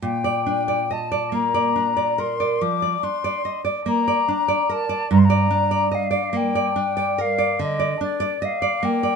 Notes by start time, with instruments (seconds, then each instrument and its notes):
0.02 nylon-string guitar A#2, flute G5
0.24 nylon-string guitar D5
0.46 nylon-string guitar D4
0.68 nylon-string guitar D5
0.91 nylon-string guitar D#5, flute A5
1.12 nylon-string guitar D5
1.32 nylon-string guitar A#3, flute A#5
1.54 nylon-string guitar D5
1.76 nylon-string guitar D4
1.97 nylon-string guitar D5
2.18 nylon-string guitar A#4, flute C6
2.40 nylon-string guitar D5
2.61 nylon-string guitar F3, flute D6
2.82 nylon-string guitar D5
3.03 nylon-string guitar D4, flute C6
3.24 nylon-string guitar D5
3.45 nylon-string guitar D#5
3.65 nylon-string guitar D5
3.86 nylon-string guitar A#3, flute A#5
4.08 nylon-string guitar D5
4.28 nylon-string guitar D4
4.48 nylon-string guitar D5
4.69 nylon-string guitar A#4, flute A5
4.89 nylon-string guitar D5
5.11 nylon-string guitar G2, flute A#5
5.18 flute C6
5.25 flute A#5
5.30 nylon-string guitar D5
5.51 nylon-string guitar D4
5.71 nylon-string guitar D5
5.92 nylon-string guitar D#5, flute F5
6.11 nylon-string guitar D5
6.33 nylon-string guitar A#3, flute G5
6.55 nylon-string guitar D5
6.76 nylon-string guitar D4
6.97 nylon-string guitar D5
7.18 nylon-string guitar A#4, flute F5
7.38 nylon-string guitar D5
7.59 nylon-string guitar D3, flute D#5
7.79 nylon-string guitar D5
8.01 nylon-string guitar D4, flute D5
8.20 nylon-string guitar D5
8.42 nylon-string guitar D#5, flute F5
8.62 nylon-string guitar D5
8.83 nylon-string guitar A#3, flute G5
9.03 nylon-string guitar D5